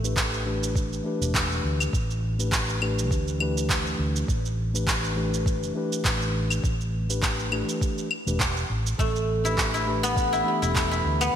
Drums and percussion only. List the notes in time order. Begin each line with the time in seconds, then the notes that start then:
0.04 shaker
0.17 kick, clap, shaker
0.34 shaker
0.63 shaker
0.76 kick, shaker
0.93 shaker
1.22 shaker
1.34 kick, clap, shaker
1.52 shaker
1.80 claves, shaker
1.93 kick, shaker
2.11 shaker
2.40 shaker
2.52 kick, clap, shaker
2.69 shaker
2.82 claves
2.99 shaker
3.11 kick, shaker
3.28 shaker
3.40 claves
3.57 shaker
3.70 kick, clap, shaker
3.87 shaker
4.16 shaker
4.28 kick, shaker
4.46 shaker
4.75 shaker
4.87 kick, clap, shaker
5.05 shaker
5.34 shaker
5.46 kick, shaker
5.63 shaker
5.93 shaker
6.05 kick, clap, shaker
6.22 shaker
6.50 claves, shaker
6.64 kick, shaker
6.81 shaker
7.10 shaker
7.23 kick, clap, shaker
7.39 shaker
7.52 claves
7.69 shaker
7.81 kick, shaker
7.98 shaker
8.11 claves
8.28 shaker
8.40 kick, clap, shaker
8.57 shaker
8.87 shaker
8.99 kick, shaker
9.16 shaker
9.45 shaker
9.58 kick, clap, shaker
9.75 shaker
10.04 shaker
10.17 kick, shaker
10.34 shaker
10.63 shaker
10.75 kick, clap, shaker
10.92 shaker
11.21 claves, shaker